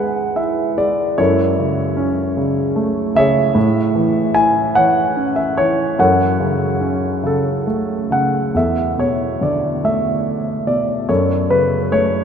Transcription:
grand piano
Already playing: C#3 G#3 G#4 B4 E5 F#5 G#5
0.36 E4 E5
0.78 G#3 D5
1.18 F#2 E4 A4 C#5
1.59 C#3
1.97 C#4
2.37 C#3
2.76 A3
3.15 C#3 G#4 C#5 E5
3.55 A2
3.95 E3
4.34 E4 G#5
4.75 E3 C#5 F#5
5.16 C#4
5.36 E5
5.58 E3 C#5
5.99 F#2 A4 C#5 F#5
6.40 C#3
6.81 C#4
7.23 C#3 A4
7.67 A3
8.10 C#3 F#5
8.54 E2 A4 E5
8.98 B2 C#5
9.41 D3 D5
9.84 A3 E5
10.67 B2 D5
11.09 F#2 A4 C#5
11.50 C#3 B4
11.92 A3 C#5

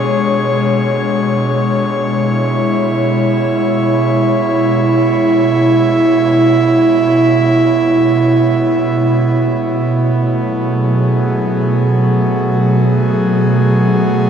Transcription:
analog synth pad
Already playing: B2 G#3 D4 C#5
2.09 E4
9.89 A3
10.28 F#3
10.54 G#4

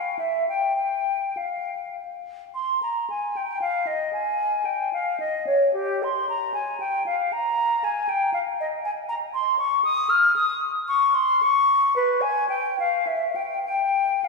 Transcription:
flute
Already playing: F5
0.19 E5
0.49 G5
0.76 G5
1.37 F5
2.55 C6
2.83 A#5
3.10 G#5
3.37 G5
3.62 F5
3.87 D#5
4.13 G#5
4.65 G5
4.93 F5
5.20 D#5
5.47 C#5
5.74 G4
6.03 C6
6.29 A#5
6.54 G#5
6.80 G5
7.06 F5
7.33 A#5
7.84 G#5
8.09 G5
8.34 F5
8.60 D#5
8.85 G#5
9.09 A#5
9.34 C6
9.59 C#6
9.85 D#6
10.10 F6
10.36 D#6
10.88 C#6
11.15 C6
11.43 C#6
11.96 B4
12.21 G#5
12.49 G5
12.80 F5
13.07 E5
13.36 G5
13.66 G5
14.24 F5

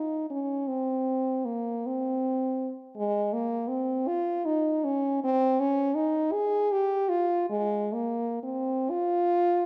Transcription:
french horn
Already playing: D#4
0.30 C#4
0.68 C4
1.45 A#3
1.87 C4
2.97 G#3
3.33 A#3
3.68 C4
4.08 F4
4.46 D#4
4.84 C#4
5.24 C4
5.60 C#4
5.95 D#4
6.33 G#4
6.72 G4
7.09 F4
7.50 G#3
7.93 A#3
8.43 C4
8.91 F4

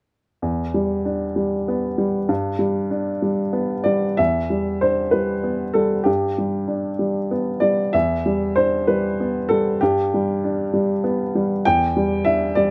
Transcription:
upright piano
0.42 E2
0.74 G3
1.05 D4
1.36 G3
1.68 B3
1.98 G3
2.29 G2
2.59 G3
2.91 D4
3.22 G3
3.53 B3
3.84 G3 D5
4.17 E2 E5
4.50 G3
4.81 D4 C5
5.11 G3 B4
5.44 B3
5.74 G3 A4
6.04 G2 G4
6.38 G3
6.68 D4
6.99 G3
7.31 B3
7.60 G3 D5
7.93 E2 E5
8.26 G3
8.56 D4 C5
8.87 G3 B4
9.20 B3
9.49 G3 A4
9.81 G2 G4
10.14 G3
10.44 D4
10.73 G3
11.04 B3
11.35 G3
11.65 E2 G5
11.97 G3
12.25 D4 E5
12.55 G3 D5

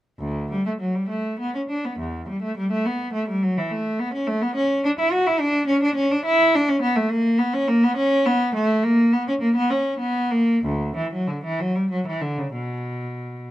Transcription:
cello
0.19 D2
0.51 G3
0.66 A3
0.80 F#3
0.95 G3
1.09 A3
1.40 B3
1.55 C#4
1.69 D4
1.85 B3
1.99 E2
2.29 G3
2.42 A3
2.57 G3
2.72 A3
2.86 B3
3.13 A3
3.29 G3
3.43 F#3
3.57 E3
3.71 A3
3.99 B3
4.14 C#4
4.27 A3
4.42 B3
4.56 C#4
4.84 D4
4.99 E4
5.12 F#4
5.26 E4
5.40 D4
5.67 C#4
5.83 D4
5.96 C#4
6.11 D4
6.26 E4
6.55 D4
6.69 C#4
6.82 B3
6.96 A3
7.10 A#3
7.38 B3
7.54 C#4
7.68 A#3
7.84 B3
7.97 C#4
8.26 B3
8.55 A3
8.83 A#3
9.13 B3
9.28 C#4
9.41 A#3
9.56 B3
9.70 C#4
10.00 B3
10.31 A#3
10.64 D2
10.96 E3
11.13 F#3
11.27 D3
11.44 E3
11.60 F#3
11.75 G3
11.91 F#3
12.07 E3
12.21 D3
12.38 C#3
12.54 B2

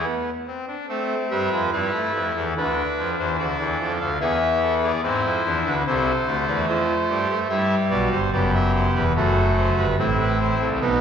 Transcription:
pipe organ
0.04 B3
0.47 C4
0.68 D4
0.89 A3 C4 A4
1.31 G2 G3 B4 E5
1.52 F2 F3 C5
1.72 G2 G3 E4 B4
1.93 A3
2.14 F2 F3
2.36 E2 E3 A4
2.57 D2 D3 D4 B4
2.98 F2 F3
3.19 E2 E3 C5
3.39 D2 D3 A4 D5
3.59 E2 E3
3.80 F2 F3
4.00 D2 D3 F5
4.20 E2 E3 B3 G#4 E5
4.41 B4
4.63 A4
4.83 G#4 D5
5.03 G#2 G#3 C4 E4 C5
5.24 F2 F3
5.45 E2 E3 D4
5.65 D2 D3 B4
5.86 C2 C3 E4 A4 C5
6.27 D2 D3 A3
6.47 E2 E3 D5
6.68 F2 F3 A4 C5
7.09 G2 G3 G4
7.29 A3
7.49 G2 G3 E4 E5
7.90 B1 B2 F#4 D5
8.12 G1 G2 C5
8.32 F#1 F#2 B3 G4 D5
8.54 E5
8.75 C5
8.95 E1 E2 B4
9.16 F#1 F#2 A3 F#4 A4
9.57 C5
9.77 G1 G2 B4
9.98 A1 A2 C4 E4 A4
10.19 B4
10.40 C5
10.60 C2 C3 A4
10.81 B1 B2 B3 D#4 B4

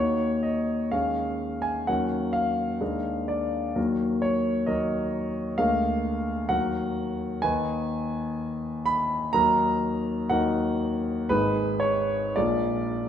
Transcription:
grand piano
Already playing: D#2 A#3 D#4 F#4 C#5
0.43 D#5
0.92 D#2 G#3 C#4 G#4 F5
1.62 G#5
1.87 D#2 F#3 C#4 A#4 F#5
2.33 F5
2.81 D#2 G#3 D4 A#4
3.28 D5
3.76 D#2 F#3 A#3 A#4
4.22 C#5
4.66 D#2 F#3 A#3 A#4 D#5
5.58 D2 G#3 A#3 A#4 F5
6.49 D#2 F#3 A#3 A#4 F#5
7.42 D#2 D#3 D#4 B4 G#5
8.86 B5
9.33 D#2 F#3 D#4 A#4 A#5
10.30 D#2 F#3 D#4 A#4 F#5
11.29 G#1 G#3 D#4 G#4 B4
11.80 C#5
12.36 A#1 G#3 A#3 F4 D5

